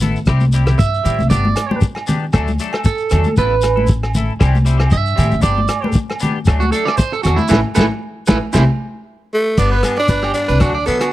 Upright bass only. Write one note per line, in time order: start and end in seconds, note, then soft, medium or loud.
0.00 0.15 A1 medium
0.28 0.73 C2 medium
0.79 1.02 G2 medium
1.05 1.17 A2 medium
1.20 1.30 C2 medium
1.31 1.54 G1 loud
2.35 2.57 D2 medium
3.12 3.24 E2 loud
3.38 4.28 A1 loud
4.41 4.86 C2 medium
4.93 5.15 G2 loud
5.18 5.30 A2 loud
5.32 5.42 A1 medium
5.44 5.67 G1 medium
6.48 6.70 D2 loud
7.25 7.37 E2 loud
7.52 7.62 A1 loud
7.78 7.88 A1 medium
8.29 8.39 A1 medium
8.55 8.65 C2 loud
9.58 9.80 G1 medium
10.09 10.32 G1 medium
10.49 10.59 C2 loud
10.61 10.84 D2 medium
10.88 11.13 D3 medium